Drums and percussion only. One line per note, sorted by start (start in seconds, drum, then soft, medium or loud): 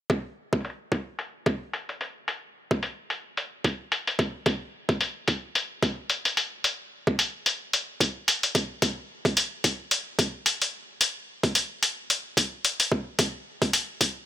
0.10 kick loud
0.10 closed hi-hat medium
0.53 kick loud
0.53 closed hi-hat soft
0.61 closed hi-hat soft
0.65 closed hi-hat medium
0.70 closed hi-hat soft
0.92 kick medium
0.92 closed hi-hat medium
1.19 closed hi-hat medium
1.46 kick medium
1.46 closed hi-hat medium
1.73 closed hi-hat medium
1.89 closed hi-hat medium
2.01 closed hi-hat medium
2.28 closed hi-hat medium
2.71 kick loud
2.71 closed hi-hat soft
2.83 closed hi-hat medium
3.10 closed hi-hat medium
3.37 closed hi-hat medium
3.64 kick medium
3.64 closed hi-hat medium
3.92 closed hi-hat medium
4.07 closed hi-hat medium
4.19 kick loud
4.19 closed hi-hat medium
4.46 kick loud
4.46 closed hi-hat medium
4.89 kick loud
4.89 closed hi-hat soft
5.01 closed hi-hat medium
5.28 kick medium
5.28 closed hi-hat medium
5.55 closed hi-hat medium
5.82 kick loud
5.82 closed hi-hat medium
6.10 closed hi-hat medium
6.25 closed hi-hat medium
6.37 closed hi-hat medium
6.64 closed hi-hat medium
7.07 kick loud
7.19 closed hi-hat medium
7.46 closed hi-hat medium
7.73 closed hi-hat medium
8.00 kick medium
8.00 closed hi-hat medium
8.28 closed hi-hat medium
8.43 closed hi-hat medium
8.55 kick loud
8.55 closed hi-hat medium
8.82 kick loud
8.82 closed hi-hat medium
9.25 kick loud
9.25 closed hi-hat soft
9.37 closed hi-hat medium
9.64 kick medium
9.64 closed hi-hat medium
9.91 closed hi-hat medium
10.19 kick loud
10.19 closed hi-hat medium
10.46 closed hi-hat medium
10.62 closed hi-hat medium
11.01 closed hi-hat medium
11.43 kick loud
11.43 closed hi-hat soft
11.55 closed hi-hat medium
11.83 closed hi-hat medium
12.10 closed hi-hat medium
12.37 kick medium
12.37 closed hi-hat medium
12.65 closed hi-hat medium
12.80 closed hi-hat medium
12.92 kick medium
13.19 kick loud
13.19 closed hi-hat medium
13.62 kick medium
13.62 closed hi-hat soft
13.73 closed hi-hat medium
14.01 kick medium
14.01 closed hi-hat medium